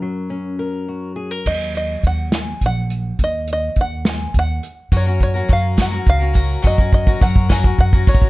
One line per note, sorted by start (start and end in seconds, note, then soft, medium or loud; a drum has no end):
0.00 1.46 F#2 medium
0.00 3.20 F#3 soft
0.00 0.88 F#4 soft
0.00 0.59 A#4 soft
0.30 1.43 C#4 soft
0.59 1.16 A#4 soft
0.88 1.43 F#4 soft
1.16 1.31 G#4 soft
1.31 1.46 A#4 soft
1.46 1.95 D#2 medium
1.46 1.74 D#5 medium
1.46 kick soft
1.46 crash medium
1.75 2.03 D#5 medium
1.75 closed hi-hat soft
2.03 2.52 D#2 medium
2.03 2.34 F#5 medium
2.03 kick soft
2.03 closed hi-hat medium
2.32 2.64 G#5 medium
2.32 snare medium
2.32 closed hi-hat medium
2.61 3.10 A#1 medium
2.61 kick soft
2.61 closed hi-hat soft
2.66 3.23 F#5 medium
2.90 closed hi-hat medium
3.19 3.68 D#2 medium
3.19 kick medium
3.19 closed hi-hat medium
3.24 3.51 D#5 medium
3.47 closed hi-hat soft
3.53 3.80 D#5 medium
3.76 4.25 D#2 medium
3.76 kick medium
3.76 closed hi-hat soft
3.81 4.09 F#5 medium
4.05 snare loud
4.05 closed hi-hat medium
4.09 4.37 G#5 medium
4.34 4.59 D#2 medium
4.34 kick medium
4.34 closed hi-hat medium
4.39 4.96 F#5 medium
4.63 closed hi-hat medium
4.92 5.40 F#2 loud
4.92 5.07 F#3 medium
4.92 5.07 C#4 medium
4.92 5.06 F#4 medium
4.92 5.04 A#4 medium
4.92 kick medium
4.92 closed hi-hat medium
4.92 tambourine medium
4.97 5.22 C#5 medium
5.05 5.35 C#4 soft
5.05 5.34 F#4 soft
5.05 5.33 A#4 medium
5.05 tambourine soft
5.21 5.52 C#5 medium
5.21 kick medium
5.21 closed hi-hat medium
5.34 5.48 C#4 soft
5.34 5.49 F#4 soft
5.34 5.49 A#4 soft
5.48 5.97 F#2 medium
5.48 5.76 F#3 medium
5.48 5.76 C#4 medium
5.48 5.77 F#4 medium
5.48 5.77 A#4 medium
5.48 kick medium
5.48 closed hi-hat medium
5.53 5.81 F5 medium
5.77 5.92 F#3 medium
5.77 5.92 C#4 medium
5.77 5.91 F#4 medium
5.77 5.89 A#4 medium
5.77 kick medium
5.77 snare loud
5.77 closed hi-hat medium
5.77 tambourine medium
5.82 6.09 F#5 medium
5.91 6.21 C#4 soft
5.91 6.19 F#4 medium
5.91 6.18 A#4 medium
6.07 6.55 C#2 medium
6.07 6.66 F5 medium
6.07 kick medium
6.07 closed hi-hat medium
6.07 tambourine soft
6.19 6.33 C#4 soft
6.19 6.34 F#4 soft
6.19 6.34 A#4 medium
6.33 6.61 F#3 medium
6.33 6.62 C#4 medium
6.33 6.62 F#4 medium
6.33 6.63 A#4 medium
6.33 kick loud
6.33 closed hi-hat medium
6.51 tambourine soft
6.62 7.12 F#2 medium
6.62 6.78 F#3 medium
6.62 6.78 C#4 medium
6.62 6.78 F#4 medium
6.62 6.76 A#4 medium
6.62 kick medium
6.62 tambourine medium
6.67 6.93 D#5 medium
6.77 7.08 C#4 soft
6.77 7.06 F#4 soft
6.77 7.05 A#4 medium
6.77 kick medium
6.93 7.22 D#5 medium
6.93 kick loud
6.93 tambourine soft
7.06 7.21 C#4 soft
7.06 7.21 F#4 soft
7.06 7.21 A#4 soft
7.06 kick loud
7.21 7.69 F#2 loud
7.21 7.48 F#3 medium
7.21 7.49 C#4 medium
7.21 7.49 F#4 medium
7.21 7.50 A#4 medium
7.21 7.51 F#5 medium
7.21 kick loud
7.21 tambourine soft
7.36 kick loud
7.49 7.64 F#3 medium
7.49 7.64 C#4 medium
7.49 7.64 F#4 medium
7.49 7.63 A#4 medium
7.49 7.80 G#5 medium
7.49 kick loud
7.49 snare loud
7.49 tambourine medium
7.64 7.94 C#4 soft
7.64 7.93 F#4 soft
7.64 7.92 A#4 medium
7.64 kick loud
7.79 8.03 F#2 medium
7.79 8.30 F#5 medium
7.79 kick loud
7.93 8.06 C#4 soft
7.93 8.07 F#4 medium
7.93 8.07 A#4 medium
7.93 kick loud
7.93 tambourine soft
8.07 8.30 F#3 medium
8.07 8.30 C#4 medium
8.07 8.30 F#4 medium
8.07 8.30 A#4 medium
8.07 8.30 C#5 medium
8.07 kick loud
8.07 tambourine soft
8.15 kick loud
8.22 kick loud